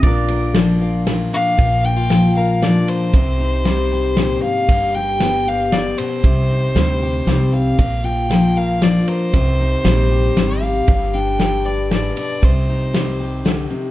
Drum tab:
RD |xxx-x-|x-x-xx|x-x-x-|x-x-xx|
SD |--o-o-|--o-o-|--o-o-|--o-o-|
BD |o-----|o-----|o-----|o-----|

RD |x-x-x-|x-x-xx|x-x-x-|x-x-xx|
SD |--o-o-|--o-o-|--o-o-|--o-o-|
BD |o-----|o-----|o-----|o-----|

RD |x-x-x-|
SD |--o-o-|
BD |o-----|